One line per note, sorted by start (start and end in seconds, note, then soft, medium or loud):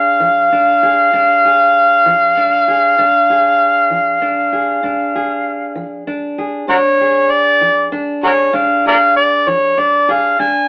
0.00 0.52 D4 medium
0.00 0.83 G#4 medium
0.00 6.02 F5 loud
0.20 0.75 F3 medium
0.52 1.13 D4 medium
0.83 1.45 G#4 medium
1.13 1.68 A#2 medium
1.13 2.37 D4 medium
1.45 2.68 G#4 medium
2.06 2.61 F3 medium
2.37 2.99 D4 medium
2.68 3.01 G#4 medium
2.98 3.54 A#2 medium
2.98 4.20 D4 medium
3.30 4.51 G#4 medium
3.90 4.46 F3 medium
4.22 4.83 D4 medium
4.52 5.14 G#4 medium
4.83 5.39 A#2 medium
4.83 6.06 D4 medium
5.15 6.37 G#4 medium
5.75 6.31 F3 medium
6.07 6.65 D4 medium
6.38 6.65 G#4 medium
6.68 7.24 A#2 medium
6.68 7.92 D4 medium
6.68 6.78 F#4 medium
6.68 6.76 A#4 medium
6.68 7.33 C#5 medium
7.01 8.23 G#4 medium
7.31 7.92 D5 loud
7.61 8.17 F3 medium
7.92 8.53 D4 medium
8.23 8.31 F#4 medium
8.23 8.85 G#4 medium
8.23 8.32 A#4 medium
8.23 8.57 C#5 medium
8.53 9.09 A#2 medium
8.53 9.77 D4 medium
8.53 8.86 F5 medium
8.86 10.08 G#4 medium
8.86 8.96 A#4 medium
8.86 8.95 D5 medium
8.86 9.15 F5 medium
9.16 9.50 D5 medium
9.47 10.02 F3 medium
9.47 9.81 C#5 medium
9.78 10.39 D4 medium
9.78 10.13 D5 medium
10.09 10.42 G#4 medium
10.09 10.40 F5 medium
10.39 10.68 A#2 medium
10.39 10.68 D4 medium
10.39 10.68 G#5 loud